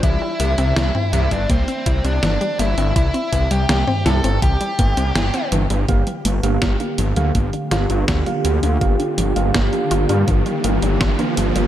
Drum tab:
HH |x-xxx-xxxxxxxxxx|xxxxx-xxxxxxxxxx|xxxxxxxxxxxxxxxx|xxxxxxxxxxxxxxxx|
SD |----o-------o---|----o-o-----o---|----o-----o-o---|----o-------o---|
T2 |-----o----------|-----o----------|----------------|----------------|
BD |o------oo-o-----|o-o-----o-o-----|o---o---o---o---|o---o---o---o---|